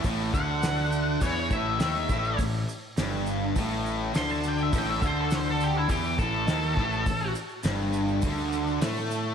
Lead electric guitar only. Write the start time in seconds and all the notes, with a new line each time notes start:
0.34 F#5
1.22 C#5
1.53 E5
1.81 E5
4.17 C6
4.31 A5
4.48 G5
4.62 E5
4.78 G5
4.91 E5
5.07 C5
5.20 A4
5.35 C5
5.50 A4
5.64 G4
5.78 E4
5.90 G4
6.19 A4